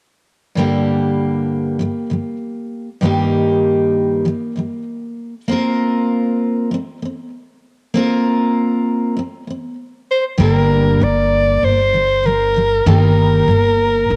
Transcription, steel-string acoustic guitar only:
0.55 G2 D3 G3 A#3
0.59 D4 G4
1.79 G2 D3 G3
2.10 G2 D3 G3
3.01 G2 D#3 G3 A#3 D#4
3.06 G4
4.25 G2 D#3 G3
4.56 G2 D#3 G3
5.48 A#3 C4 F4
5.52 A#4
6.71 A#3 C4
7.02 A#3 C4
7.94 A#3 C4 F4
7.98 A#4
9.17 A#3 C4
9.47 A#3 C4
10.38 G2 D3 G3 A#3 D4 A#4
11.00 G2 D3 G3
11.93 G2 D3 G3
12.23 G2 D3 G3
12.54 G2 D3 G3
12.86 G2 D#3 G3 A#3 D#4 A#4
13.48 G2 D#3 G3

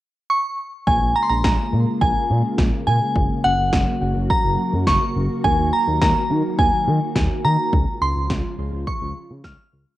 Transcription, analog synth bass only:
0.87 A#1
1.01 A#1
1.30 A#1
1.44 A#1
1.73 A#2
2.01 A#1
2.30 A#2
2.58 A#1
2.87 A#2
3.16 F#1
3.45 F#1
3.59 F#1
3.73 F#1
4.01 F#1
4.16 F#1
4.44 F#1
4.73 F#2
4.87 F#1
5.16 F#1
5.44 D#2
5.59 D#2
5.87 D#2
6.01 D#2
6.30 D#3
6.59 D#2
6.87 D#3
7.15 D#2
7.44 D#3
7.73 C#2
8.01 C#2
8.16 C#2
8.30 C#2
8.59 C#2
8.73 C#2
9.01 C#2
9.30 C#3
9.44 C#2
9.73 C#2

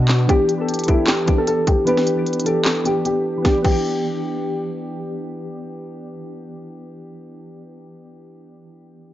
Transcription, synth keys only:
Already playing: B2 B3 D4 F#4
0.27 E3 B3 D4 G4
0.57 E3 B3 D4 A4
0.86 E3 B3 D4 G4
1.26 E3 B3 D4 G4
1.85 E3 B3 D4 G4
2.15 E3 B3 D4 G4
2.44 E3 B3 D4 G4
2.84 E3 B3 D4 G4
3.38 E3
3.42 B3
3.47 D4
3.52 G4
3.57 E3
3.62 B3
3.67 D4
3.72 G4

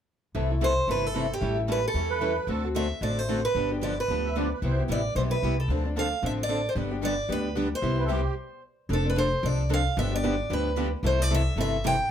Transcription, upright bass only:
0.35 C2
0.87 G1
1.41 A1
1.94 E2
2.47 D2
3.01 A1
3.55 G1
4.08 D2
4.62 C2
4.89 A1
5.15 B1
5.42 C2
5.68 D2
6.22 A1
6.75 G1
7.29 D2
7.82 C2
8.89 F1
9.43 C2
9.97 G1
10.50 D2
11.03 C2
11.56 G1

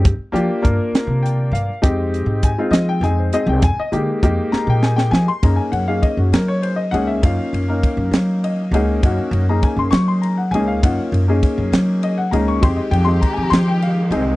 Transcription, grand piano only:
0.32 A#3 D4 F4 G4
0.62 A#3 D4 F4 A#4
1.23 G5
1.53 F5
1.82 G#3 C4 D#4 G4
2.44 G#5
2.58 G#3 C4 D#4 F4 C5
2.71 D#5
2.89 G5
3.03 G#3 C4 D#4 G#4 G#5
3.20 C5
3.33 G#3 C4 D#4 G#4 D#5
3.49 G5
3.64 G#5
3.80 D#5
3.92 G#3 A#3 D#4 G4
4.23 G#3 A#3 D#4 G4
4.52 A#5
4.70 G5
4.83 G#5
4.96 G5
5.11 G#5
5.28 C6
5.43 A#3 C#4 D#4 G#4 A#5
5.56 G#5
5.72 F#5
5.88 A#3 C#4 D#4 G#4 F5
6.02 D#5
6.19 F#4
6.33 A#4
6.48 C#5
6.62 C5
6.76 D#5
6.91 A#3 C#4 D#4 G#4 F#5
7.07 E5
7.22 A#3 C#4 D#4 F4 F5
7.68 A#3 C#4 D#4 A#4
8.44 D#5
8.73 A#3 C#4 D#4 G#4 F#5
9.03 A#3 C#4 D#4 F#4
9.49 A#3 C#4 D#4 G#4 A#5
9.63 G#5
9.79 C6
9.91 C#6
10.08 C6
10.22 A#5
10.38 F#5
10.51 A#3 C#4 D#4 G#4 G#5
10.67 F5
10.83 A#3 C#4 D#4 F4 F#5
11.28 A#3 C#4 D#4 G#4
12.04 D#5
12.18 F#5
12.31 A#3 C#4 D#4 G#4 A#5
12.48 C#6
12.61 G#3 C4 D#4 G4 C6
12.77 D#5
12.91 G5
13.05 G#3 C4 D#4 G4 C6
13.21 A#5
13.33 G#5
13.43 A#5
13.50 C6
13.68 G5
13.83 F5
14.11 G#3 C4 D#4 G#4

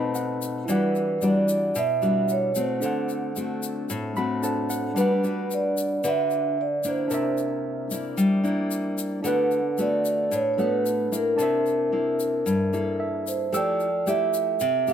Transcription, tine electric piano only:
Already playing: D#4 B4 C5 A5 B5
0.15 F#5
0.66 E4 D5
0.72 F#5
2.80 D4 A4
2.84 C5 F#5
4.17 B5
4.42 D4 A4 C5 F#5 A5
4.70 F#5
4.94 D4
4.99 B4 F#5
7.08 D4 A#4
7.12 C5 E5
9.22 D4 A4 B4
9.28 F#5
10.57 D4 A4 B4 F#5
11.37 D4 A5
11.41 C5 E5
13.00 E5
13.53 A4 E6
13.57 G5

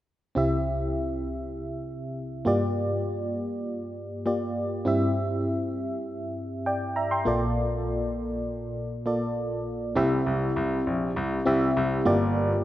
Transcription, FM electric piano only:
0.35 C2 C3 C4 E4 G4 E5
2.45 G2 A#3 F4 G4 D5
4.26 A#3 F4 G4 D5
4.85 G2 C4 E4 G4 E5
6.66 D5 G5
6.96 E5 A#5
7.11 G5 C6
7.25 A#1 A#2 A#3 F4 A4 D5
9.06 A#3 F4 A4 D5
9.96 C3 C4 E4 G4 E5
11.46 C4 E4 G4 E5
12.05 G2 A#3 F4 G4 D5

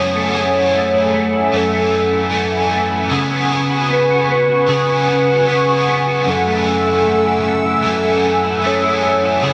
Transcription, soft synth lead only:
Already playing: C#5
1.56 A4
3.92 B4
4.31 B4
5.51 B4
6.30 A4
7.87 A4
8.66 C#5
9.45 C#5

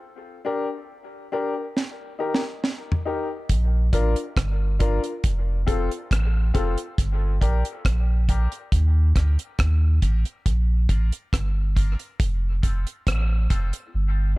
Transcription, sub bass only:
3.50 A#1
3.94 A1
4.37 G1
5.24 F1
5.68 F1
6.11 A1
6.55 F1
6.99 G1
7.42 A#1
7.85 A#1
8.72 D#2
9.16 D2
9.59 D#2
10.03 A1
10.46 A#1
10.90 A1
11.33 G1
12.20 F1
12.64 F1
13.07 A1
13.51 F1
13.94 G1

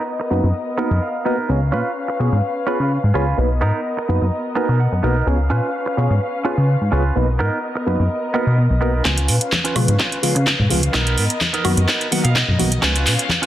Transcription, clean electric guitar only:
0.20 muted clean electric guitar stroke
0.31 muted clean electric guitar stroke
0.78 B3 D#4 A#4 F#5
1.02 F5
1.25 B3 D#4 A#4 D#5
1.72 C#4 F4 B4
2.08 muted clean electric guitar stroke
2.19 muted clean electric guitar stroke
2.67 C#4 F4 B4
3.14 C#4 F4 B4
3.61 B3 D#4 A#4
3.97 muted clean electric guitar stroke
4.08 muted clean electric guitar stroke
4.55 B3 D#4 A#4 G#5
4.80 F#5
5.03 B3 D#4 A#4
5.50 C#4 F4 B4
5.86 muted clean electric guitar stroke
5.97 muted clean electric guitar stroke
6.45 C#4 F4 B4
6.92 C#4 F4 B4
7.39 B3 D#4 A#4
7.75 muted clean electric guitar stroke
7.87 muted clean electric guitar stroke
8.34 B3 D#4 A#4
8.81 B3 D#4 A#4
9.05 C#4 F4
9.64 C#4 F4 B4
9.99 C#4 F4 B4
10.35 muted clean electric guitar stroke
10.46 muted clean electric guitar stroke
10.93 B3 D#4 A#4
11.53 B3 D#4 A#4
11.88 B3 D#4 A#4
12.12 F#5
12.24 F5, muted clean electric guitar stroke
12.35 D#5, muted clean electric guitar stroke
12.82 C#4 F4 B4
13.42 C#4 F4

